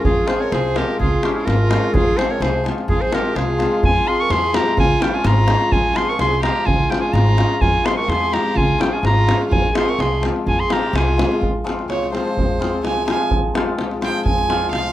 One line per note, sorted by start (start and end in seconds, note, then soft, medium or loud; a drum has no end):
0.04 0.19 F2 medium
0.04 0.32 F4 medium
0.04 0.30 G#4 medium
0.04 davul low medium
0.26 0.73 F3 medium
0.26 0.74 G#3 medium
0.26 0.43 C4 medium
0.26 0.43 F4 medium
0.26 0.43 G#4 medium
0.26 0.42 C5 medium
0.26 davul high medium
0.40 0.55 A#4 medium
0.40 0.54 C#5 medium
0.52 0.81 C2 loud
0.52 0.79 G#4 medium
0.52 0.79 C5 medium
0.52 davul high medium
0.74 1.04 F3 medium
0.74 1.04 G#3 medium
0.74 0.90 C4 medium
0.74 0.91 F4 medium
0.74 1.00 G4 medium
0.74 0.99 A#4 medium
0.74 davul high medium
0.88 davul high soft
0.99 1.14 C#2 medium
0.99 1.26 F4 medium
0.99 1.25 G#4 loud
0.99 davul low medium
1.23 1.67 F3 medium
1.23 1.68 G#3 medium
1.23 1.38 C#4 medium
1.23 1.28 E4 medium
1.23 1.39 F4 medium
1.23 1.27 G4 medium
1.23 1.31 G#4 medium
1.23 davul high medium
1.27 1.32 F4 medium
1.27 1.36 G4 medium
1.31 1.39 E4 medium
1.35 1.48 F4 medium
1.35 1.47 G#4 medium
1.46 1.75 G#1 loud
1.46 1.96 F4 medium
1.46 1.95 A#4 medium
1.46 davul high medium
1.69 1.99 F3 medium
1.69 1.99 G#3 medium
1.69 1.85 C#4 medium
1.69 1.85 F4 medium
1.69 davul high medium
1.84 davul high soft
1.94 2.08 F2 loud
1.94 2.20 F4 medium
1.94 2.19 G#4 loud
1.94 davul low loud
2.17 2.63 F3 medium
2.17 2.63 G#3 medium
2.17 2.32 C4 medium
2.17 2.33 F4 medium
2.17 2.32 G#4 medium
2.17 2.32 C5 loud
2.17 davul high medium
2.30 2.43 A#4 medium
2.30 2.43 C#5 medium
2.40 2.69 C2 loud
2.40 2.65 G#4 medium
2.40 2.65 C5 medium
2.40 davul high medium
2.64 2.94 F3 medium
2.64 2.94 G#3 medium
2.64 2.80 C4 medium
2.64 2.80 F4 medium
2.64 davul high medium
2.78 davul high soft
2.88 3.02 F2 loud
2.88 3.03 F4 medium
2.88 3.03 G#4 loud
2.88 davul low medium
3.01 3.17 G#4 medium
3.01 3.16 C5 medium
3.01 davul high soft
3.12 3.57 F3 medium
3.12 3.57 G#3 medium
3.12 3.28 C4 medium
3.12 3.28 F4 medium
3.12 3.41 G4 medium
3.12 3.38 A#4 medium
3.12 davul high medium
3.25 davul high soft
3.36 3.64 C2 loud
3.36 3.85 F4 medium
3.36 3.84 G#4 medium
3.36 davul high medium
3.58 3.89 F3 medium
3.58 3.89 G#3 medium
3.58 3.74 C4 medium
3.58 3.75 F4 medium
3.58 davul high medium
3.72 davul high soft
3.83 3.97 F2 loud
3.83 4.11 F4 medium
3.83 4.09 G#5 loud
3.83 davul low medium
4.05 4.52 F3 medium
4.05 4.53 G#3 medium
4.05 4.22 C4 medium
4.05 4.22 F4 medium
4.05 4.22 C6 medium
4.10 4.22 G#4 medium
4.20 4.34 A#4 medium
4.20 4.33 C#6 loud
4.30 4.59 E2 loud
4.30 4.57 G#4 medium
4.30 4.57 C6 loud
4.30 davul high medium
4.53 4.83 F3 medium
4.53 4.83 G#3 medium
4.53 4.69 C4 medium
4.53 4.70 F4 medium
4.53 4.78 G4 medium
4.53 4.79 A#5 loud
4.53 davul high medium
4.66 davul high soft
4.77 4.92 C#2 loud
4.77 5.02 F4 medium
4.77 5.04 G#5 loud
4.77 davul low loud
5.00 5.46 F3 medium
5.00 5.46 G#3 medium
5.00 5.16 C#4 medium
5.00 5.15 E4 medium
5.00 5.17 F4 medium
5.00 5.16 G5 medium
5.00 davul high medium
5.13 5.26 F4 medium
5.13 5.28 G#5 medium
5.24 5.53 G#1 loud
5.24 5.73 F4 medium
5.24 5.74 A#5 loud
5.24 davul high medium
5.47 5.78 F3 medium
5.47 5.78 G#3 medium
5.47 5.63 C#4 medium
5.47 5.64 F4 medium
5.47 davul high medium
5.61 davul high soft
5.72 5.86 F2 loud
5.72 5.97 F4 medium
5.72 5.98 G#5 loud
5.72 davul low medium
5.93 6.40 F3 medium
5.93 6.41 G#3 medium
5.93 6.10 C4 medium
5.93 6.11 F4 medium
5.93 6.11 G#4 medium
5.93 6.10 C6 loud
5.93 davul high medium
6.09 6.18 A#4 medium
6.09 6.20 C#6 medium
6.19 6.48 C2 loud
6.19 6.41 G#4 medium
6.19 6.42 C6 loud
6.19 davul high medium
6.41 6.72 F3 medium
6.41 6.72 G#3 medium
6.41 6.58 C4 medium
6.41 6.58 F4 medium
6.41 6.67 G4 medium
6.41 6.68 A#5 medium
6.41 davul high medium
6.56 davul high soft
6.65 6.81 C#2 loud
6.65 6.92 F4 medium
6.65 6.92 G#5 loud
6.65 davul low medium
6.81 davul high soft
6.89 7.35 F3 medium
6.89 7.36 G#3 medium
6.89 7.05 C#4 medium
6.89 7.03 E4 medium
6.89 7.06 F4 medium
6.89 7.02 G5 medium
6.89 davul high medium
7.01 7.13 F4 medium
7.01 7.15 G#5 medium
7.13 7.42 G#1 loud
7.13 7.60 F4 medium
7.13 7.63 A#5 medium
7.13 davul high medium
7.27 davul high soft
7.37 7.67 F3 medium
7.37 7.67 G#3 medium
7.37 7.53 C#4 medium
7.37 7.53 F4 medium
7.37 davul high medium
7.49 davul high soft
7.60 7.76 F2 loud
7.60 7.87 F4 medium
7.60 7.87 G#5 loud
7.60 davul low medium
7.84 8.30 F3 medium
7.84 8.31 G#3 medium
7.84 8.00 C4 medium
7.84 8.01 F4 medium
7.84 7.97 G#4 medium
7.84 7.97 C6 medium
7.84 davul high medium
7.97 8.10 A#4 medium
7.97 8.10 C#6 medium
8.08 8.37 E2 loud
8.08 8.35 G#4 medium
8.08 8.35 C6 loud
8.08 davul high medium
8.32 8.62 F3 medium
8.32 8.62 G#3 medium
8.32 8.48 C4 medium
8.32 8.48 F4 medium
8.32 8.57 G4 medium
8.32 8.59 A#5 medium
8.32 davul high medium
8.46 davul high soft
8.55 8.70 C#2 loud
8.55 8.82 F4 medium
8.55 8.83 G#5 loud
8.55 davul low medium
8.78 9.25 F3 medium
8.78 9.26 G#3 medium
8.78 8.95 C#4 medium
8.78 8.93 E4 medium
8.78 8.95 F4 medium
8.78 8.95 G5 medium
8.78 davul high medium
8.92 9.03 F4 medium
8.92 9.04 G#5 medium
9.03 9.32 G#1 loud
9.03 9.48 F4 medium
9.03 9.39 A#5 loud
9.03 davul high medium
9.26 9.56 F3 medium
9.26 9.56 G#3 medium
9.26 9.42 C#4 medium
9.26 9.43 F4 medium
9.26 davul high medium
9.41 davul high soft
9.50 9.65 F2 loud
9.50 9.73 F4 medium
9.50 9.74 G#5 loud
9.50 davul low loud
9.75 10.20 F3 medium
9.75 10.21 G#3 medium
9.75 9.90 C4 medium
9.75 9.91 F4 medium
9.75 9.90 G#4 medium
9.75 9.91 C6 medium
9.75 davul high medium
9.88 10.01 A#4 medium
9.88 10.02 C#6 medium
9.99 10.27 C2 loud
9.99 10.23 G#4 medium
9.99 10.24 C6 medium
9.99 davul high medium
10.21 10.51 F3 medium
10.21 10.51 G#3 medium
10.21 10.37 C4 medium
10.21 10.38 F4 medium
10.21 davul high medium
10.36 davul high soft
10.47 10.61 F2 loud
10.47 10.61 F4 medium
10.47 10.61 G#5 loud
10.47 davul low medium
10.59 10.74 G#4 medium
10.59 10.74 C6 loud
10.69 11.15 F3 medium
10.69 11.16 G#3 medium
10.69 10.85 C4 medium
10.69 10.85 F4 medium
10.69 10.99 G4 medium
10.69 10.98 A#5 medium
10.69 davul high medium
10.83 davul high soft
10.93 11.22 C2 loud
10.93 11.42 G#5 medium
10.93 davul high medium
10.97 11.43 F4 medium
11.08 davul high soft
11.17 11.46 F3 medium
11.17 11.46 G#3 medium
11.17 11.33 C4 medium
11.17 11.33 F4 medium
11.17 davul high medium
11.32 davul high soft
11.41 11.88 F2 medium
11.41 davul low medium
11.64 12.11 F3 medium
11.64 12.11 G#3 medium
11.64 11.80 C4 medium
11.64 11.80 F4 medium
11.64 davul high medium
11.79 davul high soft
11.88 12.17 C2 medium
11.88 12.11 C#5 medium
11.88 davul high medium
12.03 davul high soft
12.12 12.58 F3 medium
12.12 12.58 G#3 medium
12.12 12.28 C4 medium
12.12 12.28 F4 medium
12.12 12.80 C5 medium
12.12 davul high medium
12.28 davul high soft
12.37 12.84 F2 medium
12.37 davul low medium
12.59 13.05 F3 medium
12.59 13.06 G#3 medium
12.59 12.75 C4 medium
12.59 12.75 F4 medium
12.59 davul high medium
12.84 13.12 C2 loud
12.84 13.07 G#5 medium
12.84 davul high medium
12.97 davul high soft
13.07 13.53 F3 medium
13.07 13.54 G#3 soft
13.07 13.23 C4 medium
13.07 13.23 F4 medium
13.07 13.30 G#5 medium
13.07 davul high medium
13.20 davul high soft
13.31 13.79 F2 medium
13.31 davul low medium
13.54 14.00 F3 medium
13.54 14.01 G#3 medium
13.54 13.70 C4 medium
13.54 13.71 F4 medium
13.54 davul high medium
13.79 14.07 C2 loud
13.79 davul high medium
13.91 davul high soft
14.01 14.47 F3 medium
14.01 14.48 G#3 medium
14.01 14.17 C4 medium
14.01 14.17 F4 medium
14.01 14.25 G5 medium
14.01 davul high medium
14.15 davul high soft
14.25 14.73 F2 medium
14.25 14.70 G#5 medium
14.25 davul low medium
14.38 davul high soft
14.48 14.93 F3 medium
14.48 14.93 G#3 medium
14.48 14.65 C4 medium
14.48 14.65 F4 medium
14.48 davul high medium
14.62 davul high soft
14.72 14.93 C2 loud
14.72 14.93 F5 medium
14.72 davul high medium
14.84 davul high soft